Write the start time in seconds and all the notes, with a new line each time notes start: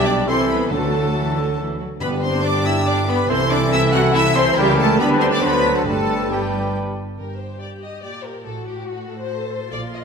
Already playing: B1 B2 G3 D4 G4 D5
0.05 D4 D5 D6
0.28 C2 C3 E3 C4 E4 A4 C5 C6
0.49 B3 B4 B5
0.71 D2 D3 F#3 A3 D4 F#4 A4 A5
1.16 E3
1.37 D3
1.58 E3
1.80 F#3
2.00 G1 G2 D3 G3 B3 D4 G4 B4 B5
2.22 C4 C5 C6
2.43 D4 D5 D6
2.64 E4 E5 E6
2.84 D4 D5 D6
3.06 B3 B4 B5
3.27 C2 C3 E3 C4 E4 A4 C5 C6
3.49 D4 D5 D6
3.71 E4 E5 E6
3.92 F#4 F#5 F#6
4.14 E4 E5 E6
4.35 C4 C5 C6
4.56 C#2 C#3 G3 E4 G4 A#4 G5
4.78 A3 A4 A5
4.98 D2 D3 G3 B3 D4 B4 B5
5.20 C4 C5 C6
5.31 D4 D5 D6
5.41 D2 D3 F#3 B3 D4 B4 C5 B5
5.45 B4
5.75 A3 A4 A5
5.86 G1 G2 G3 A3 D4 A4 B4 A5
6.30 G3 D4 G4 B4 G5
7.18 G1 G2 G4 A#4 G5
7.40 C5
7.61 D5
7.82 D#5
8.03 A#2 D5 G5
8.25 A#4
8.45 A1 A2 F#4 A4 F#5
8.67 G4
8.87 F#4 F#5
9.08 A4
9.18 C5
9.31 A4 A5
9.53 C6
9.72 A#1 A#2 F4 D5
9.95 D#5